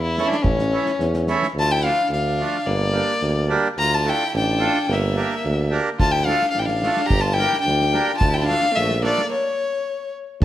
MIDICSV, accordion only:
0, 0, Header, 1, 2, 480
1, 0, Start_track
1, 0, Tempo, 554017
1, 392, Time_signature, 2, 2, 24, 8
1, 9051, End_track
2, 0, Start_track
2, 0, Title_t, "Accordion"
2, 0, Program_c, 0, 21
2, 151, Note_on_c, 0, 57, 67
2, 152, Note_on_c, 0, 52, 68
2, 160, Note_on_c, 0, 61, 57
2, 170, Note_on_c, 0, 64, 83
2, 307, Note_off_c, 0, 57, 0
2, 308, Note_off_c, 0, 52, 0
2, 312, Note_off_c, 0, 61, 0
2, 317, Note_off_c, 0, 64, 0
2, 626, Note_on_c, 0, 52, 58
2, 630, Note_on_c, 0, 57, 55
2, 639, Note_on_c, 0, 61, 55
2, 645, Note_on_c, 0, 64, 65
2, 786, Note_off_c, 0, 52, 0
2, 788, Note_off_c, 0, 57, 0
2, 792, Note_off_c, 0, 61, 0
2, 795, Note_off_c, 0, 64, 0
2, 1108, Note_on_c, 0, 57, 71
2, 1109, Note_on_c, 0, 52, 76
2, 1112, Note_on_c, 0, 61, 83
2, 1121, Note_on_c, 0, 64, 99
2, 1267, Note_off_c, 0, 57, 0
2, 1268, Note_off_c, 0, 52, 0
2, 1269, Note_off_c, 0, 61, 0
2, 1274, Note_off_c, 0, 64, 0
2, 1598, Note_on_c, 0, 53, 57
2, 1600, Note_on_c, 0, 57, 51
2, 1604, Note_on_c, 0, 62, 43
2, 1605, Note_on_c, 0, 65, 61
2, 1753, Note_off_c, 0, 53, 0
2, 1754, Note_off_c, 0, 57, 0
2, 1756, Note_off_c, 0, 62, 0
2, 1756, Note_off_c, 0, 65, 0
2, 2070, Note_on_c, 0, 57, 64
2, 2071, Note_on_c, 0, 53, 62
2, 2081, Note_on_c, 0, 62, 57
2, 2088, Note_on_c, 0, 65, 71
2, 2229, Note_off_c, 0, 53, 0
2, 2229, Note_off_c, 0, 57, 0
2, 2235, Note_off_c, 0, 62, 0
2, 2238, Note_off_c, 0, 65, 0
2, 2533, Note_on_c, 0, 55, 63
2, 2534, Note_on_c, 0, 58, 58
2, 2547, Note_on_c, 0, 62, 44
2, 2550, Note_on_c, 0, 67, 61
2, 2700, Note_off_c, 0, 55, 0
2, 2701, Note_off_c, 0, 58, 0
2, 2707, Note_off_c, 0, 62, 0
2, 2709, Note_off_c, 0, 67, 0
2, 3020, Note_on_c, 0, 55, 94
2, 3022, Note_on_c, 0, 62, 73
2, 3028, Note_on_c, 0, 58, 76
2, 3035, Note_on_c, 0, 67, 101
2, 3184, Note_off_c, 0, 55, 0
2, 3185, Note_off_c, 0, 62, 0
2, 3188, Note_off_c, 0, 58, 0
2, 3192, Note_off_c, 0, 67, 0
2, 3500, Note_on_c, 0, 57, 55
2, 3510, Note_on_c, 0, 62, 51
2, 3510, Note_on_c, 0, 65, 45
2, 3517, Note_on_c, 0, 69, 69
2, 3664, Note_off_c, 0, 57, 0
2, 3669, Note_off_c, 0, 62, 0
2, 3669, Note_off_c, 0, 65, 0
2, 3672, Note_off_c, 0, 69, 0
2, 3973, Note_on_c, 0, 57, 61
2, 3982, Note_on_c, 0, 65, 58
2, 3985, Note_on_c, 0, 62, 66
2, 3990, Note_on_c, 0, 69, 80
2, 4141, Note_off_c, 0, 57, 0
2, 4145, Note_off_c, 0, 65, 0
2, 4146, Note_off_c, 0, 62, 0
2, 4149, Note_off_c, 0, 69, 0
2, 4467, Note_on_c, 0, 58, 56
2, 4471, Note_on_c, 0, 62, 58
2, 4475, Note_on_c, 0, 67, 63
2, 4479, Note_on_c, 0, 70, 55
2, 4628, Note_off_c, 0, 58, 0
2, 4629, Note_off_c, 0, 62, 0
2, 4632, Note_off_c, 0, 67, 0
2, 4634, Note_off_c, 0, 70, 0
2, 4943, Note_on_c, 0, 58, 74
2, 4943, Note_on_c, 0, 62, 72
2, 4944, Note_on_c, 0, 67, 79
2, 4959, Note_on_c, 0, 70, 85
2, 5106, Note_off_c, 0, 58, 0
2, 5106, Note_off_c, 0, 62, 0
2, 5106, Note_off_c, 0, 67, 0
2, 5113, Note_off_c, 0, 70, 0
2, 5438, Note_on_c, 0, 57, 68
2, 5438, Note_on_c, 0, 65, 47
2, 5440, Note_on_c, 0, 62, 53
2, 5449, Note_on_c, 0, 69, 58
2, 5593, Note_off_c, 0, 57, 0
2, 5593, Note_off_c, 0, 65, 0
2, 5594, Note_off_c, 0, 62, 0
2, 5598, Note_off_c, 0, 69, 0
2, 5911, Note_on_c, 0, 57, 62
2, 5922, Note_on_c, 0, 62, 62
2, 5922, Note_on_c, 0, 65, 62
2, 5929, Note_on_c, 0, 69, 70
2, 6069, Note_off_c, 0, 57, 0
2, 6074, Note_off_c, 0, 62, 0
2, 6074, Note_off_c, 0, 65, 0
2, 6078, Note_off_c, 0, 69, 0
2, 6392, Note_on_c, 0, 58, 58
2, 6398, Note_on_c, 0, 62, 48
2, 6401, Note_on_c, 0, 67, 55
2, 6412, Note_on_c, 0, 70, 69
2, 6549, Note_off_c, 0, 58, 0
2, 6553, Note_off_c, 0, 62, 0
2, 6554, Note_off_c, 0, 67, 0
2, 6560, Note_off_c, 0, 70, 0
2, 6859, Note_on_c, 0, 58, 72
2, 6868, Note_on_c, 0, 62, 70
2, 6871, Note_on_c, 0, 67, 53
2, 6881, Note_on_c, 0, 70, 86
2, 7023, Note_off_c, 0, 58, 0
2, 7027, Note_off_c, 0, 62, 0
2, 7029, Note_off_c, 0, 67, 0
2, 7034, Note_off_c, 0, 70, 0
2, 7338, Note_on_c, 0, 57, 58
2, 7349, Note_on_c, 0, 62, 48
2, 7354, Note_on_c, 0, 65, 58
2, 7354, Note_on_c, 0, 69, 66
2, 7502, Note_off_c, 0, 57, 0
2, 7508, Note_off_c, 0, 62, 0
2, 7510, Note_off_c, 0, 65, 0
2, 7510, Note_off_c, 0, 69, 0
2, 7815, Note_on_c, 0, 57, 68
2, 7816, Note_on_c, 0, 62, 74
2, 7827, Note_on_c, 0, 65, 60
2, 7830, Note_on_c, 0, 69, 85
2, 7980, Note_off_c, 0, 57, 0
2, 7981, Note_off_c, 0, 62, 0
2, 7986, Note_off_c, 0, 65, 0
2, 7988, Note_off_c, 0, 69, 0
2, 9051, End_track
0, 0, End_of_file